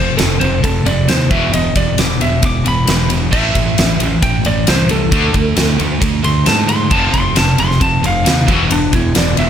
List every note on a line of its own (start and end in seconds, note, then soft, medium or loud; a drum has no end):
0.00 0.17 F1 medium
0.00 0.17 F2 medium
0.00 0.17 C3 medium
0.00 0.17 C5 medium
0.17 0.40 F1 medium
0.17 0.39 F2 medium
0.17 0.39 C3 medium
0.17 0.39 A4 loud
0.17 snare loud
0.17 ride loud
0.40 0.62 F1 medium
0.40 0.61 F2 medium
0.40 0.61 C3 medium
0.40 0.62 C5 loud
0.40 ride medium
0.62 0.85 F1 medium
0.62 0.83 F2 medium
0.62 0.83 C3 medium
0.62 0.86 A4 medium
0.62 kick medium
0.62 ride medium
0.86 1.07 F1 loud
0.86 1.06 F2 medium
0.86 1.06 C3 medium
0.86 1.08 D5 medium
0.86 ride medium
1.08 1.29 D#2 loud
1.08 1.29 F2 medium
1.08 1.29 C3 medium
1.08 1.30 C5 loud
1.08 snare loud
1.08 ride medium
1.30 1.52 E1 medium
1.30 1.52 E2 medium
1.30 1.52 B2 loud
1.30 1.52 E3 loud
1.30 1.53 E5 medium
1.30 kick loud
1.30 ride medium
1.53 1.75 E1 medium
1.53 1.73 E2 medium
1.53 1.73 B2 medium
1.53 1.75 D#5 medium
1.53 ride loud
1.76 1.97 E1 medium
1.76 1.96 E2 medium
1.76 1.97 B2 medium
1.76 1.98 D5 medium
1.76 kick medium
1.76 ride medium
1.98 2.19 E1 medium
1.98 2.18 E2 medium
1.98 2.18 B2 medium
1.98 2.20 D6 medium
1.98 snare loud
1.98 ride medium
2.21 2.42 E1 medium
2.21 2.41 E2 medium
2.21 2.41 B2 medium
2.21 2.43 E5 medium
2.21 ride medium
2.43 2.64 E1 medium
2.43 2.64 E2 medium
2.43 2.64 B2 medium
2.43 2.66 D6 medium
2.43 kick loud
2.43 ride medium
2.65 2.87 E1 medium
2.65 2.86 E2 medium
2.65 2.86 B2 medium
2.65 3.10 B5 loud
2.65 ride medium
2.87 3.30 E1 loud
2.87 3.08 E2 medium
2.87 3.08 B2 medium
2.87 snare loud
2.87 ride loud
3.09 3.30 E2 medium
3.09 3.30 B2 medium
3.09 ride medium
3.32 3.54 A1 loud
3.32 3.53 A2 loud
3.32 3.53 E3 medium
3.32 3.54 A3 loud
3.32 4.20 E5 loud
3.32 kick loud
3.32 crash loud
3.55 3.76 A1 medium
3.55 3.75 A2 medium
3.55 3.76 E3 medium
3.55 kick medium
3.55 ride medium
3.78 3.99 A1 medium
3.78 3.98 A2 medium
3.78 3.98 E3 medium
3.78 snare loud
3.78 ride medium
4.00 4.21 A1 medium
4.00 4.20 A2 medium
4.00 4.21 E3 medium
4.00 ride medium
4.22 4.44 A1 medium
4.22 4.42 A2 medium
4.22 4.42 E3 medium
4.22 4.44 G5 medium
4.22 kick loud
4.22 ride medium
4.45 4.66 A1 medium
4.45 4.66 A2 medium
4.45 4.65 E3 medium
4.45 4.67 D5 loud
4.45 ride medium
4.67 5.10 C2 loud
4.67 4.88 A2 medium
4.67 4.88 E3 medium
4.67 4.90 C5 loud
4.67 snare loud
4.67 ride medium
4.89 5.10 A2 medium
4.89 5.10 E3 medium
4.89 5.77 A4 loud
4.89 ride medium
5.12 5.33 D2 loud
5.12 5.33 D3 loud
5.12 5.33 A3 medium
5.12 5.33 D4 loud
5.12 kick loud
5.12 ride loud
5.34 5.56 D2 medium
5.34 5.55 D3 medium
5.34 5.55 A3 medium
5.34 kick medium
5.34 ride medium
5.56 5.78 D2 medium
5.56 5.77 D3 medium
5.56 5.77 A3 medium
5.56 snare loud
5.56 ride medium
5.79 6.01 D2 medium
5.79 5.99 D3 medium
5.79 5.99 A3 medium
5.79 ride medium
6.01 6.23 D2 medium
6.01 6.22 D3 medium
6.01 6.22 A3 medium
6.01 kick loud
6.01 ride loud
6.24 6.46 D2 medium
6.24 6.44 D3 medium
6.24 6.44 A3 medium
6.24 6.46 C6 loud
6.24 ride medium
6.46 6.89 G#2 medium
6.46 6.66 D3 medium
6.46 6.67 A3 medium
6.46 6.68 A5 medium
6.46 snare loud
6.46 ride medium
6.68 6.89 D3 medium
6.68 6.89 A3 medium
6.68 6.91 C6 loud
6.68 ride medium
6.91 7.12 F1 loud
6.91 7.12 F2 loud
6.91 7.12 C3 loud
6.91 7.12 F3 loud
6.91 7.13 A5 medium
6.91 kick loud
6.91 crash medium
7.13 7.35 F1 medium
7.13 7.34 F2 medium
7.13 7.34 C3 medium
7.13 7.35 C6 loud
7.13 kick medium
7.13 ride medium
7.35 7.58 F1 medium
7.35 7.56 F2 medium
7.35 7.56 C3 medium
7.35 7.58 A5 loud
7.35 snare loud
7.35 ride loud
7.58 7.80 F1 medium
7.58 7.78 F2 medium
7.58 7.79 C3 medium
7.58 7.81 C6 loud
7.58 ride medium
7.71 snare soft
7.80 8.02 F1 medium
7.80 8.01 F2 medium
7.80 8.01 C3 medium
7.80 8.03 A5 loud
7.80 kick loud
7.80 ride loud
8.02 8.25 F1 medium
8.02 8.23 F2 medium
8.02 8.23 C3 medium
8.02 ride medium
8.06 8.48 F5 loud
8.24 8.47 D#2 loud
8.24 8.45 F2 medium
8.24 8.46 C3 medium
8.24 snare loud
8.24 ride medium
8.48 8.69 E1 medium
8.48 8.69 E2 loud
8.48 8.69 B2 medium
8.48 8.69 E3 loud
8.48 kick loud
8.48 ride medium
8.70 8.92 E1 loud
8.70 8.91 E2 medium
8.70 8.91 B2 medium
8.70 8.93 D4 loud
8.70 ride loud
8.92 9.14 E1 medium
8.92 9.13 E2 medium
8.92 9.13 B2 medium
8.92 9.16 E4 loud
8.92 kick medium
8.92 ride medium
9.15 9.37 E1 medium
9.15 9.35 E2 medium
9.15 9.35 B2 medium
9.15 9.38 D5 medium
9.15 snare loud
9.15 ride medium
9.37 9.50 E1 medium
9.37 9.50 E2 medium
9.37 9.50 B2 medium
9.37 9.50 E5 loud
9.37 ride medium